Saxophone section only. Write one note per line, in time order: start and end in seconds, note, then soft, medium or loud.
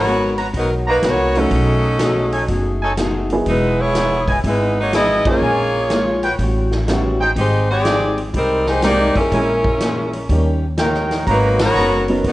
0.00 0.35 B3 medium
0.00 0.36 F#4 medium
0.00 0.36 A#4 loud
0.00 0.35 C#5 loud
0.57 0.72 F#3 medium
0.57 0.72 B3 medium
0.57 0.71 D#4 medium
0.57 0.71 A#4 medium
0.89 1.03 F#3 medium
0.89 1.03 A#3 medium
0.89 1.03 D#4 medium
0.89 1.03 B4 medium
1.06 1.37 B3 medium
1.06 1.37 F#4 medium
1.06 1.37 A#4 medium
1.06 1.37 C#5 loud
1.38 2.83 F#3 medium
1.38 2.83 C#4 medium
1.38 2.83 D#4 medium
1.38 2.83 A4 medium
3.48 3.78 G#3 medium
3.48 3.78 D#4 medium
3.48 3.78 E4 medium
3.48 3.78 B4 loud
3.81 4.29 B3 medium
3.81 4.29 E4 medium
3.81 4.29 G#4 medium
3.81 4.29 C#5 loud
4.46 4.76 G#3 medium
4.46 4.76 D#4 medium
4.46 4.76 E4 medium
4.46 4.76 B4 medium
4.80 4.95 A#3 medium
4.80 4.95 D#4 medium
4.80 4.95 F#4 medium
4.80 4.95 C#5 medium
4.95 5.25 B3 medium
4.95 5.25 E4 medium
4.95 5.25 G#4 medium
4.95 5.25 D#5 loud
5.26 6.36 A#3 medium
5.26 6.36 F4 medium
5.26 6.36 G#4 medium
5.26 6.69 C#5 loud
7.38 7.68 G#3 medium
7.38 7.68 D#4 medium
7.38 7.68 G4 medium
7.38 7.68 C5 medium
7.71 8.16 C4 medium
7.71 8.16 G4 loud
7.71 8.16 G#4 medium
7.71 8.16 D5 loud
8.35 8.65 G3 medium
8.35 8.66 C4 medium
8.35 8.66 D#4 medium
8.35 8.66 A#4 medium
8.68 8.84 G#3 medium
8.68 8.83 D#4 medium
8.68 8.82 G4 medium
8.68 8.84 C5 medium
8.84 9.14 A#3 medium
8.84 9.14 D#4 medium
8.84 9.14 G4 medium
8.84 9.14 D5 loud
9.16 10.26 G#3 medium
9.16 10.59 C#4 medium
9.16 10.26 E4 medium
9.16 10.59 A#4 medium
11.30 11.59 F#3 medium
11.30 11.59 A#3 medium
11.30 11.59 D#4 medium
11.30 11.59 B4 medium
11.62 12.07 B3 medium
11.62 12.07 F#4 medium
11.62 12.07 A#4 medium
11.62 12.07 C#5 loud
12.27 12.32 F#3 medium
12.27 12.32 B3 medium
12.27 12.32 D#4 medium
12.27 12.32 A#4 medium